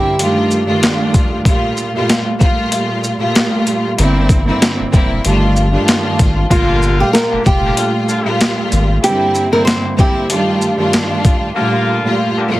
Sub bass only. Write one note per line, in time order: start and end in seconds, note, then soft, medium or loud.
3.99 4.51 G1 loud
4.80 4.85 E1 soft
4.94 5.19 E1 loud
5.25 5.77 G1 loud
6.20 6.46 G#1 medium
6.51 7.03 G1 loud
7.32 7.38 F1 soft
7.46 7.72 F1 loud
8.72 8.98 G#1 loud